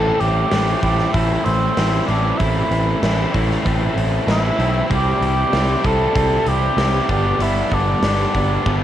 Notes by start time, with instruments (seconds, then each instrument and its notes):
Already playing: fingered electric bass A1, overdriven electric guitar A2 E3 A3 C4 E4, cor anglais A4
0.20 fingered electric bass A1, cor anglais G4, open hi-hat
0.51 fingered electric bass A1, overdriven electric guitar A2 E3 A3 C4 E4, snare, open hi-hat
0.82 fingered electric bass A1, overdriven electric guitar A2 E3 A3 C4 E4, cor anglais G4, kick, open hi-hat
0.98 snare
1.13 fingered electric bass A1, overdriven electric guitar A2 E3 A3 C4 E4, cor anglais E4, kick, open hi-hat
1.44 fingered electric bass A1, cor anglais C4, open hi-hat
1.77 fingered electric bass A1, overdriven electric guitar A2 E3 A3 C4 E4, snare, open hi-hat
2.07 fingered electric bass A1, overdriven electric guitar A2 E3 A3 C4 E4, cor anglais D4, open hi-hat
2.38 fingered electric bass A1, overdriven electric guitar A2 E3 A3 C4 E4, cor anglais E4, kick, open hi-hat
2.71 fingered electric bass A1, open hi-hat
3.02 fingered electric bass A1, overdriven electric guitar A2 E3 A3 C4 E4, snare, open hi-hat
3.34 fingered electric bass A1, overdriven electric guitar A2 E3 A3 C4 E4, kick, open hi-hat
3.51 snare
3.65 fingered electric bass A1, overdriven electric guitar A2 E3 A3 C4 E4, kick, open hi-hat
3.96 fingered electric bass A1, open hi-hat
4.27 fingered electric bass A1, overdriven electric guitar A2 E3 A3 C4 E4, cor anglais E4, snare, open hi-hat
4.58 fingered electric bass B1, overdriven electric guitar A2 E3 A3 C4 E4, open hi-hat
4.90 fingered electric bass C2, overdriven electric guitar C3 E3 G3 C4 E4, kick, open hi-hat
4.94 cor anglais G4
5.21 fingered electric bass C2, open hi-hat
5.26 cor anglais G4
5.53 fingered electric bass C2, overdriven electric guitar C3 E3 G3 C4 E4, snare, open hi-hat
5.84 fingered electric bass C2, overdriven electric guitar C3 E3 G3 C4 E4, cor anglais A4, kick, open hi-hat
6.15 fingered electric bass C2, overdriven electric guitar C3 E3 G3 C4 E4, kick, open hi-hat
6.46 fingered electric bass C2, cor anglais G4, open hi-hat
6.77 fingered electric bass C2, overdriven electric guitar C3 E3 G3 C4 E4, snare, open hi-hat
7.08 fingered electric bass G1, overdriven electric guitar G2 D3 G3 B3 D4 G4, cor anglais G4, kick, open hi-hat
7.39 fingered electric bass G1, overdriven electric guitar G2 D3 G3 B3 D4 G4, cor anglais E4, open hi-hat
7.71 fingered electric bass G1, cor anglais D4, kick, open hi-hat
8.02 fingered electric bass G1, overdriven electric guitar G2 D3 G3 B3 D4 G4, snare, open hi-hat
8.34 fingered electric bass G1, overdriven electric guitar G2 D3 G3 B3 D4 G4, kick, open hi-hat
8.65 fingered electric bass G1, overdriven electric guitar G2 D3 G3 B3 D4 G4, kick